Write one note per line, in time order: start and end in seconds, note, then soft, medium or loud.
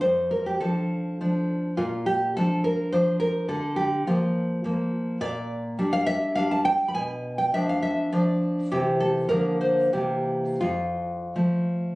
0.01 0.60 F2 soft
0.01 0.30 C5 medium
0.31 0.46 A#4 medium
0.46 0.60 G4 medium
0.60 1.20 F3 soft
0.60 1.20 D4 soft
0.60 1.46 A4 medium
1.21 1.74 F3 soft
1.21 1.74 D4 soft
1.77 2.34 A#2 soft
1.77 2.06 F4 medium
2.06 2.35 G4 medium
2.37 2.92 F3 soft
2.37 2.93 D4 soft
2.37 2.64 A4 medium
2.64 2.92 A#4 medium
2.92 3.46 F3 soft
2.92 3.46 D4 soft
2.92 3.19 C5 medium
3.20 3.48 A#4 medium
3.48 4.04 D3 medium
3.48 3.76 A4 medium
3.76 4.05 G4 medium
4.07 4.63 F3 soft
4.07 4.64 A#3 soft
4.07 4.90 F4 medium
4.64 5.17 F3 soft
4.64 5.18 A#3 soft
5.21 5.76 A#2 medium
5.21 5.90 D5 medium
5.79 6.35 G3 soft
5.79 6.35 D4 soft
5.93 6.06 F5 medium
6.06 6.35 E5 medium
6.35 6.91 G3 soft
6.35 6.91 D4 medium
6.35 6.51 F5 medium
6.51 6.65 A5 medium
6.65 6.87 G5 medium
6.88 6.94 B5 medium
6.94 7.51 B2 medium
6.94 7.37 G#5 medium
7.38 7.53 G5 medium
7.54 8.12 F3 soft
7.54 8.12 D4 soft
7.54 7.68 E5 medium
7.69 7.82 F5 medium
7.82 8.11 E5 medium
8.12 8.67 F3 soft
8.12 8.68 D4 soft
8.12 8.69 D5 medium
8.72 9.29 C3 medium
8.72 9.27 E3 soft
8.72 9.27 C4 soft
8.72 8.99 G4 medium
9.00 9.28 A4 medium
9.29 9.91 D3 medium
9.29 9.89 F3 soft
9.29 9.89 A#3 soft
9.29 9.59 A#4 medium
9.61 9.92 C5 medium
9.93 10.60 C3 medium
9.93 10.58 E3 soft
9.93 10.58 A#3 soft
9.93 10.59 G4 medium
10.61 11.33 F2 soft
10.61 11.95 F4 medium
11.36 11.95 F3 soft
11.36 11.95 A3 soft